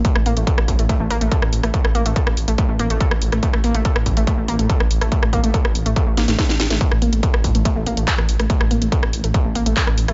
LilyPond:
<<
  \new Staff \with { instrumentName = "Synth arpeggio sound" } { \time 4/4 \key c \mixolydian \tempo 4 = 142 a16 a16 bes16 a16 a'16 r8 a16 a16 a16 bes16 a16 a'16 r8 a16 | a16 a16 bes16 a16 a'16 r8 a16 a16 a16 bes16 a16 a'16 r8 a16 | a16 a16 bes16 a16 a'16 r8 a16 a16 a16 bes16 a16 a'16 r8 a16 | a16 a16 bes16 a16 a'16 r8 a16 a16 a16 bes16 a16 a'16 r8 a16 |
a16 a16 bes16 a16 a'16 r8 a16 a16 a16 bes16 a16 a'16 r8 a16 | a16 a16 bes16 a16 a'16 r8 a16 a16 a16 bes16 a16 a'16 r8 a16 | }
  \new Staff \with { instrumentName = "Detuned saw bass" } { \clef bass \time 4/4 \key c \mixolydian r16 a,,16 a,,16 a,,16 r16 a,,16 a,,16 a,,16 r16 a,,16 a,,16 a,,16 r16 a,,16 a,,16 a,,16 | r16 a,,16 a,,16 a,,16 r16 a,,16 a,,16 a,,16 r16 a,,16 a,,16 a,,16 r16 a,,16 a,,16 a,,16 | r16 a,,16 a,,16 a,,16 r16 a,,16 a,,16 a,,16 r16 a,,16 a,,16 a,,16 r16 a,,16 a,,16 a,,16 | r16 a,,16 a,,16 a,,16 r16 a,,16 a,,16 a,,16 r16 a,,16 a,,16 a,,16 r16 a,,16 a,,16 a,,16 |
r16 a,,16 a,,16 a,,16 r16 a,,16 a,,16 a,,16 r16 a,,16 a,,16 a,,16 r16 a,,16 a,,16 a,,16 | r16 a,,16 a,,16 a,,16 r16 a,,16 a,,16 a,,16 r16 a,,16 a,,16 a,,16 r16 a,,16 a,,16 a,,16 | }
  \new DrumStaff \with { instrumentName = "Drums" } \drummode { \time 4/4 <hh bd>16 ss16 hho16 hh16 <hh bd>16 ss16 <hho bd>16 hh16 <hh bd>8 hho16 hh16 <hh bd>16 ss16 hho16 <hh ss>16 | <hh bd>16 ss16 hho16 hh16 <hh bd>16 ss16 hho16 hh16 <hh bd>8 hho16 hh16 <hh bd>16 ss16 hho16 <hh ss>16 | <hh bd>16 ss16 hho16 hh16 <hh bd>16 ss16 <hho bd>16 hh16 <hh bd>8 hho16 hh16 <hh bd>16 ss16 hho16 <hh ss>16 | <hh bd>16 ss16 <hho bd>16 hh16 <hh bd>16 ss16 hho16 hh16 <hh bd>8 <hho sn>16 <hh sn>16 <hh bd sn>16 sn16 <hho sn>16 <hh sn>16 |
<hh bd>16 ss16 hho16 hh16 <hh bd>16 ss16 <hho bd>16 hh16 <hh bd>8 hho16 hh16 <hc hh bd>16 ss16 hho16 <hh ss>16 | <hh bd>16 ss16 hho16 hh16 <hh bd>16 ss16 hho16 hh16 <hh bd>8 hho16 hh16 <hc hh bd>16 ss16 hho16 <hh ss>16 | }
>>